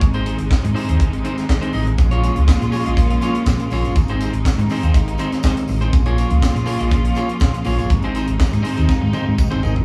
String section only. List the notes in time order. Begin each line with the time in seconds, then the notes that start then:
Already playing: G#3
0.00 C3 D#3 D#4
1.98 C#3 A#3 F4
3.96 C3 D#3 D#4
5.93 C#3 A#3 F4
7.90 C3 D#3 G#3 D#4